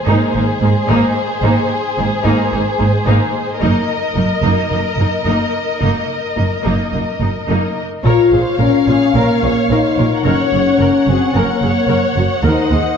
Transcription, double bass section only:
0.07 0.15 G#1 soft
0.35 0.43 G#1 soft
0.62 0.70 G#1 soft
0.90 0.98 G#1 medium
1.44 1.52 G#1 medium
1.99 2.07 G#1 soft
2.25 2.33 G#1 soft
2.53 2.61 G#1 soft
2.80 2.88 G#1 soft
3.07 3.15 G#1 soft
3.61 3.69 F#1 soft
4.16 4.24 F#1 soft
4.43 4.51 F#1 soft
4.71 4.79 F#1 soft
4.98 5.06 F#1 soft
5.26 5.34 F#1 soft
5.82 5.90 F#1 soft
6.38 6.46 F#1 soft
6.66 6.74 F#1 soft
6.93 7.01 F#1 soft
7.20 7.28 F#1 soft
7.49 7.57 F#1 soft
8.05 8.13 A#1 soft
8.31 8.39 A#1 soft
8.59 8.67 A#1 soft
8.88 8.96 A#1 soft
9.15 9.23 A#1 soft
9.43 9.51 A#1 soft
9.70 9.78 A#1 soft
9.98 10.06 A#1 soft
10.25 10.33 F#1 soft
10.52 10.60 F#1 soft
10.79 10.87 F#1 soft
11.08 11.16 F#1 soft
11.35 11.43 F#1 soft
11.62 11.70 F#1 soft
11.88 11.96 F#1 soft
12.16 12.24 F#1 soft
12.43 12.51 D#2 soft
12.71 12.79 D#2 soft

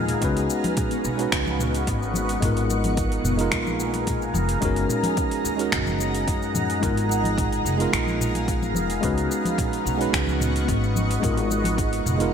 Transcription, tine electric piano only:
0.00 0.21 G#3 medium
0.00 0.24 B3 medium
0.00 0.22 D#4 medium
0.00 0.24 F4 medium
0.00 0.20 G#4 medium
0.00 0.24 A#4 medium
0.21 1.15 G#3 medium
0.21 1.15 C#4 medium
0.21 1.16 D#4 medium
0.21 1.16 F#4 medium
0.21 1.17 B4 loud
1.17 2.38 G#3 medium
1.17 2.39 C#4 medium
1.17 2.39 D#4 medium
1.17 2.40 F#4 medium
1.21 2.40 B4 medium
2.41 3.35 G#3 medium
2.41 3.36 B3 medium
2.41 3.36 D#4 medium
2.41 3.37 F4 medium
2.45 3.37 A#4 medium
3.37 4.58 G#3 medium
3.37 4.59 B3 medium
3.37 4.59 D#4 medium
3.37 4.60 F4 medium
3.37 4.60 A#4 loud
4.61 5.55 G#3 medium
4.61 5.56 C#4 medium
4.61 5.56 D#4 medium
4.61 5.57 F#4 medium
4.65 5.57 A#4 loud
5.56 6.78 G#3 medium
5.56 6.79 C#4 medium
5.56 6.79 D#4 medium
5.56 6.80 F#4 medium
5.61 6.80 A#4 medium
6.80 7.75 G#3 medium
6.80 7.75 B3 medium
6.80 7.76 D#4 medium
6.80 7.76 F4 medium
6.84 7.77 A#4 medium
7.77 8.99 G#3 medium
7.77 8.99 B3 medium
7.77 9.00 D#4 medium
7.77 9.00 F4 medium
7.82 9.01 A#4 medium
9.00 9.95 G#3 medium
9.00 9.96 C#4 medium
9.00 9.96 D#4 medium
9.00 9.97 F#4 medium
9.00 9.97 B4 loud
9.97 11.19 G#3 medium
9.97 11.19 C#4 medium
9.97 11.20 D#4 medium
9.97 11.20 F#4 medium
10.02 11.21 B4 medium
11.20 12.15 G#3 medium
11.20 12.15 B3 medium
11.20 12.16 D#4 medium
11.20 12.17 F4 medium
11.24 12.17 A#4 medium
12.18 12.34 G#3 medium
12.18 12.34 B3 medium
12.18 12.34 D#4 medium
12.18 12.34 F4 medium
12.22 12.34 A#4 medium

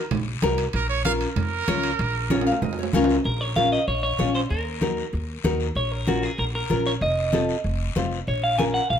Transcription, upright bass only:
0.11 0.36 A#1 medium
0.42 0.68 C2 medium
0.74 1.24 A#1 medium
1.36 1.61 F2 medium
1.68 1.93 C#2 medium
1.99 2.49 A#1 loud
2.62 2.87 F2 medium
2.94 3.19 C#2 medium
3.25 3.75 A#1 medium
3.88 4.13 A#1 medium
4.19 4.44 A#1 medium
4.50 5.01 D#2 medium
5.13 5.38 D#2 medium
5.44 5.69 D#2 medium
5.76 6.26 A#1 medium
6.38 6.64 A#1 medium
6.70 6.95 A#1 medium
7.01 7.52 F1 medium
7.64 7.90 F1 medium
7.96 8.21 F1 medium
8.28 8.78 A#1 medium
8.90 9.00 A#1 medium

